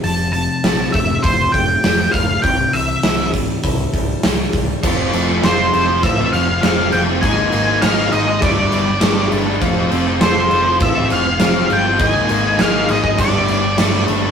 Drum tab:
CC |----------------|----------------|x-x-x-x-x-x-x-x-|x-x-x-x-x-x-x-x-|
HH |o-o-o-o-o-o-o-o-|o-o-o-o-o-o-o-o-|----------------|----------------|
SD |----o-------o---|----oo------o---|----o-------o---|----o-------o---|
BD |------o-o-o---o-|o-----o-o-o---o-|o-------o-------|o-------o-------|

CC |x-x-x-x-x-x-x-x-|x-x-x-x-x-x-x-x-|
HH |----------------|----------------|
SD |----o-------o---|----o-------o---|
BD |o-------o-------|o------oo-------|